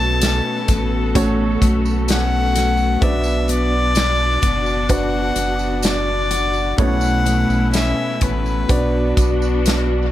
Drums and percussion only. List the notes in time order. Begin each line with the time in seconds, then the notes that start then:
0.22 snare, closed hi-hat, tambourine
0.68 kick, closed hi-hat, tambourine
1.15 kick, closed hi-hat, tambourine
1.62 kick, closed hi-hat, tambourine
1.85 tambourine
2.08 snare, closed hi-hat, tambourine
2.55 snare, closed hi-hat, tambourine
2.77 tambourine
3.02 kick, closed hi-hat
3.24 tambourine
3.48 closed hi-hat, tambourine
3.95 snare, closed hi-hat, tambourine
4.42 kick, closed hi-hat, tambourine
4.66 tambourine
4.89 kick, closed hi-hat, tambourine
5.36 closed hi-hat, tambourine
5.59 tambourine
5.82 snare, closed hi-hat, tambourine
6.31 closed hi-hat, tambourine
6.53 tambourine
6.78 kick, closed hi-hat
7.01 tambourine
7.26 closed hi-hat, tambourine
7.50 tambourine
7.73 snare, closed hi-hat, tambourine
8.21 kick, closed hi-hat, tambourine
8.46 tambourine
8.69 kick, closed hi-hat, tambourine
9.17 kick, closed hi-hat, tambourine
9.42 tambourine
9.66 snare, closed hi-hat, tambourine